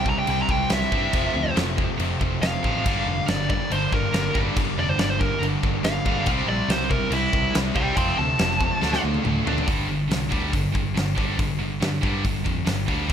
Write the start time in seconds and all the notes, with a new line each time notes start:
Already playing: C2 C3 G3 C4 E4
0.06 C3 G3 A#5, kick
0.19 G5
0.27 C2 C3 G3 C4 E4 G5, crash
0.42 A#5
0.49 C2 C3 G3 G5, kick
0.70 C2 C3 G3 E5, snare, crash
0.82 snare
0.92 G2 C3 G3 C4, kick
1.13 F1 F2 C3 F3 A3 C4, kick, crash
1.34 D2 F2 C3
1.56 F1 F2 C3, snare, crash
1.77 F2 C3, kick
1.97 F1 F2 C3 F3 A3, crash
2.02 C4
2.19 F1 F2 C3, kick
2.42 F1 F2 C3 F5, snare, crash
2.63 A1 F2 C3 F3, kick
2.85 G1 G2 D3 G3 A#3 D4, kick, crash
3.06 F1 G2 D3
3.27 G1 G2 D3 D5, snare, crash
3.49 G2 D3 D5, kick
3.70 G1 G2 D3 G3 A#3 D4 C5, crash
3.92 G1 G2 D3 A#4, kick
4.13 G1 G2 D3, snare, crash
4.34 G1 G2 D3 G3, kick
4.56 G1 G2 D3 G3 A#3 D4, kick, crash
4.78 F1 G2 D3 D5
4.89 C5
4.98 G1 G2 D3 D5, snare, crash
5.10 C5
5.20 G2 D3 A#4, kick
5.41 G1 G2 D3 G3 A#3 D4, crash
5.63 G1 G2 D3, kick
5.84 G1 G2 D3 F5, snare, crash
6.06 G1 G2 D3 G3, kick
6.26 C2 C3 G3 C4 E4, kick, crash
6.46 A#1 C3 G3 D5
6.68 C2 C3 G3 C5, snare, crash
6.82 snare
6.90 C3 G3 A#4, kick
7.11 C2 C3 G3 C4 E4, crash
7.32 C2 C3 G3, kick
7.54 C2 C3 G3, snare, crash
7.75 C2 C3 G3 C4 D5 G5, kick
7.95 F1 F2 C3 F3 A3 C4 F4 G5 C6, kick, crash
8.17 D2 F2 C3 A5
8.38 F1 F2 C3, snare, crash
8.51 snare
8.60 F2 C3, kick
8.81 D2 D3 A3 D4 F4, snare
8.93 snare
9.02 D2 D3 A3
9.14 high tom
9.24 D2 D3 A3, mid tom
9.45 D2 D3 A3 D4, floor tom
9.58 floor tom
9.65 G1 G2 D3 G3, kick, open hi-hat
9.87 G2 D3
10.08 C2 G2 D3, snare, open hi-hat
10.29 D2 G2 D3 G3, kick
10.51 G1 G2 D3, kick, open hi-hat
10.72 G1 G2 D3, kick
10.94 G1 G2 D3, snare, open hi-hat
11.15 G1 G2 D3 G3, kick
11.37 G1 G2 D3, kick, open hi-hat
11.59 G1 G2 D3
11.80 G2 D3, snare, open hi-hat
12.01 G2 D3 G3, kick
12.23 G1 G2 D3, kick, open hi-hat
12.44 F2 G2 D3, kick
12.65 G1 G2 D3, snare, open hi-hat
12.86 D2 G2 D3 G3, kick
13.07 C2 C3 G3 C4, kick, open hi-hat